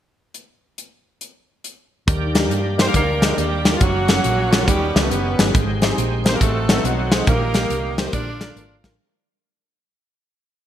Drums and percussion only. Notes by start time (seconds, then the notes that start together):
0.34 closed hi-hat
0.78 closed hi-hat
1.21 closed hi-hat
1.64 closed hi-hat
2.08 kick, closed hi-hat
2.35 snare, closed hi-hat
2.51 closed hi-hat
2.79 snare, closed hi-hat
2.94 kick, closed hi-hat
3.22 snare, closed hi-hat
3.38 closed hi-hat
3.65 snare, closed hi-hat
3.81 kick, closed hi-hat
4.08 snare, closed hi-hat
4.24 closed hi-hat
4.53 snare, closed hi-hat
4.68 kick, closed hi-hat
4.96 snare, closed hi-hat
5.11 closed hi-hat
5.39 snare, closed hi-hat
5.55 kick, closed hi-hat
5.82 snare, closed hi-hat
5.98 closed hi-hat
6.26 snare, closed hi-hat
6.41 kick, closed hi-hat
6.69 snare, closed hi-hat
6.85 closed hi-hat
7.12 snare, closed hi-hat
7.27 kick, closed hi-hat
7.54 snare, closed hi-hat
7.70 closed hi-hat
7.98 snare, closed hi-hat
8.13 kick, closed hi-hat
8.41 snare, closed hi-hat
8.57 closed hi-hat
8.84 kick, snare, closed hi-hat